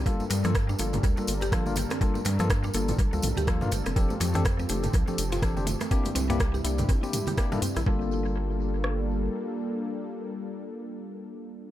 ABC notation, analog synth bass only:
X:1
M:4/4
L:1/16
Q:"Swing 16ths" 1/4=123
K:Gdor
V:1 name="Analog synth bass" clef=bass
G,,, z G,,4 G,,,2 D,, z G,,,4- G,,, z | z2 G,,4 G,,,2 z D,, B,,, D,,2 G,, G,,, F,,, | F,,, z F,,4 F,,,2 C,, z F,,,4- F,,, z | z2 C,,4 C,,2 z6 z B,,, |
G,,,12 z4 | z16 |]